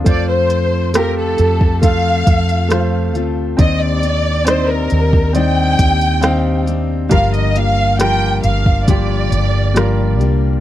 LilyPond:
<<
  \new Staff \with { instrumentName = "Violin section" } { \time 4/4 \key g \minor \tempo 4 = 68 d''16 c''8. bes'16 a'8. f''4. r8 | ees''16 d''8. c''16 bes'8. g''4. r8 | f''16 ees''16 f''8 g''8 f''8 d''4. r8 | }
  \new Staff \with { instrumentName = "Grand piano" } { \time 4/4 \key g \minor <a f' c''>4 <a f' g'>4 <a f' a'>4 <a f' c''>4 | <c' ees' d''>4 <c' ees' d''>4 <c' ees' d''>4 <c' ees' f''>4 | <g f' bes'>4 <g f' bes'>4 <g f' g'>4 <g f' bes'>4 | }
  \new Staff \with { instrumentName = "Grand piano" } { \clef bass \time 4/4 \key g \minor r1 | ees4. r2 r8 | g,4. r2 r8 | }
  \new Staff \with { instrumentName = "Steel-string acoustic guitar" } { \time 4/4 \key g \minor <f c' f' a'>4 <f c' f' a'>4 <f c' f' a'>4 <f c' f' a'>8 <c' f' a'>8 | <ees g c' d' g'>8 <c' d' g'>8 <g c' d' g'>4 <ees g c' d' g'>4 <g c' d' g'>8 <c' d' g'>8 | <g, d f bes d' g'>8 <f bes d' g'>8 <f bes d' g'>4 <g, d f bes d' g'>4 <f bes d' g'>8 <f bes d' g'>8 | }
  \new Staff \with { instrumentName = "Fretless electric bass" } { \clef bass \time 4/4 \key g \minor f,4. f,4 f,4 d,8 | ees,4. ees,4 ees,4. | g,,4. g,,4 g,,4 c,8 | }
  \new DrumStaff \with { instrumentName = "Drums" } \drummode { \time 4/4 <hh bd>8 hh8 <hh ss>8 hh16 bd16 <hh bd>8 <hh bd>16 hh16 <hh ss>8 hh8 | <hh bd>8 hh8 <hh ss>8 hh16 bd16 hh8 <hh bd>16 hh16 <hh ss>8 hh8 | <hh bd>16 hh16 hh8 <hh ss>8 hh16 bd16 <hh bd>8 hh8 <hh ss>8 hh8 | }
>>